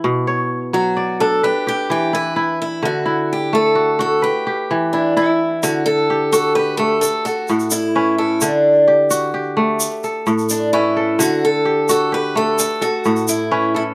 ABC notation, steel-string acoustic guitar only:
X:1
M:12/8
L:1/8
Q:3/8=86
K:D
V:1 name="Steel-string acoustic guitar"
z3 F2 A G G G B2 E | F2 G A2 A G3 D E2 | F A2 A B A A F2 E2 E | D2 z6 z D E2 |
F A2 A B A A F2 E2 E |]